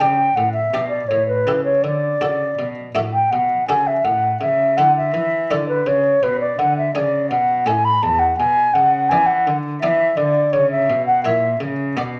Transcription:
0.00 C#3 D4 G4 D5 G5
0.35 A2 F#5
0.53 E5
0.72 B2 D4 G4 D5
0.89 D5
1.08 A2 C#5
1.28 B4
1.45 C#3 E4 G4 A4
1.65 C#5
1.83 D3 D5
2.20 C#3 D4 F#4 A4
2.58 B2
2.94 A2 D4 F#4 A4 E5
3.13 G5
3.31 B2 F#5
3.68 C#3 D4 F#4 A4 G#5
3.87 E5
4.04 A2 F#5
4.41 C#3 E5
4.77 D3 C#4 E4 A4 F#5
4.97 E5
5.14 E3
5.50 D3 C#4 E4 A4 D5
5.69 B4
5.86 C#3 C#5
6.23 B2 B4
6.40 D5
6.59 D3 F#5
6.78 E5
6.95 C#3 D4 G#4 D5
7.31 B2 F#5
7.66 A2 C#4 E4 A4 G#5
7.85 B5
8.02 E2 A5
8.19 F#5
8.38 B2 G#5
8.74 C#3 F#5
9.09 E3 B3 D4 D5 G#5
9.26 F#5
9.47 D3
9.81 E3 B3 D4 D5 E5
10.17 D3 D5
10.53 C#3 C#5
10.71 E5
10.89 B2
11.06 F#5
11.24 A#2 A#3 E4 C#5 E5
11.60 C#3
11.96 B2 B3 F#4 D5

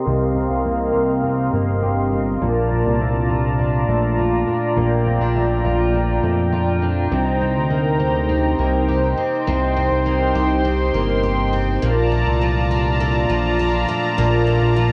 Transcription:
Already playing: A#3 C4 G4 A#4 D#5 C6
0.06 C2 C3 F5
0.35 C4
0.51 C2
0.65 A#3
0.94 C2 G4
1.23 C4
1.53 G1 A#3
1.82 G4
2.12 C4
2.41 A#1 A#2 F4 D5 A5 A#5
2.71 D4
2.86 C2
3.00 A3
3.30 F4
3.59 D4
3.89 A#1 A3
4.18 F4
4.47 D4
4.77 A#1 A#2 G5
5.06 C4
5.21 A#1 D4
5.35 A3
5.65 A#1 F4
5.94 D4
6.23 F2 A3
6.52 F4
6.82 D4
7.12 C2 C3 D#4 C5 A#5
7.41 C4
7.56 D2
7.70 A#3
8.00 G4
8.29 C4
8.59 C2 A#3
8.88 G4
9.17 C4
9.47 C2 C3 C6
9.76 C4
9.91 C2
10.06 A#3
10.35 C2 G4
10.65 C4
10.94 G1 A#3
11.23 G4
11.53 C4
11.82 A#1 A#2 F4 D5 A5 A#5
12.12 A3
12.27 C2
12.41 F3
12.71 D4
13.00 A3
13.29 A#1 F3
13.59 D4
13.88 A3
14.18 A#1 A#2
14.47 A3
14.62 A#1
14.76 F3

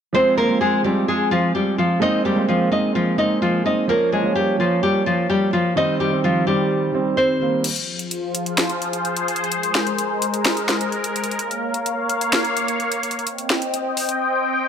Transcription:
0.13 F3 G#3 C4 C5
0.38 A#3 A#4
0.48 F3 G#3 C4
0.61 G#3 G#4
0.83 F3 G3 G#3 C4 G4
1.08 G#3 G#4
1.31 F3 F4
1.55 G3 G4
1.78 F3 F4
2.00 G#3 A#3 C4 D#4 D#5
2.25 G3 G4
2.36 G#3 A#3 C4
2.48 F3 F4
2.71 G#3 A#3 C4 D#4 D#5
2.95 F3 F4
3.18 G#3 A#3 C4 D#4 D#5
3.42 F3 F4
3.64 G#3 A#3 C4 D#4 D#5
3.88 F3 A#3 C#4 A#4
4.12 G#3 G#4
4.23 F3 A#3 C#4
4.35 G3 G4
4.58 F3 A#3 C#4 F4
4.83 G3 G4
5.06 F3 F4
5.30 G3 G4
5.53 F3 F4
5.75 D#3 G3 C4 D#4 D#5
6.00 G3 G4
6.10 D#3 G3 C4
6.24 F3 F4
6.45 D#3 G3 C4 G4
6.92 D#3 G3 C4
7.17 C4 C5
7.40 D#3 G3 A#3
7.64 F3 F4 G#4 C5, closed hi-hat, crash
7.76 closed hi-hat
7.99 closed hi-hat
8.11 closed hi-hat
8.35 closed hi-hat
8.46 closed hi-hat
8.57 finger snap, snare, closed hi-hat
8.70 closed hi-hat
8.82 closed hi-hat
8.93 closed hi-hat
9.05 closed hi-hat
9.17 closed hi-hat
9.28 closed hi-hat
9.36 closed hi-hat
9.44 closed hi-hat
9.52 G#3 A#4, closed hi-hat
9.63 closed hi-hat
9.74 finger snap, snare
9.87 closed hi-hat
9.98 closed hi-hat
10.22 closed hi-hat
10.34 closed hi-hat
10.45 finger snap, snare, closed hi-hat
10.57 closed hi-hat
10.68 finger snap, snare, closed hi-hat
10.81 closed hi-hat
10.92 closed hi-hat
11.04 closed hi-hat
11.16 closed hi-hat
11.24 closed hi-hat
11.31 closed hi-hat
11.39 A#3 C#5 F5, closed hi-hat
11.51 closed hi-hat
11.74 closed hi-hat
11.86 closed hi-hat
12.10 closed hi-hat
12.21 closed hi-hat
12.32 finger snap, snare, closed hi-hat
12.45 closed hi-hat
12.57 closed hi-hat
12.68 closed hi-hat
12.80 closed hi-hat
12.92 closed hi-hat
13.03 closed hi-hat
13.11 closed hi-hat
13.19 closed hi-hat
13.27 C4 C5 D#5 G5, closed hi-hat
13.38 closed hi-hat
13.49 finger snap, snare
13.62 closed hi-hat
13.74 closed hi-hat
13.97 open hi-hat
14.09 closed hi-hat

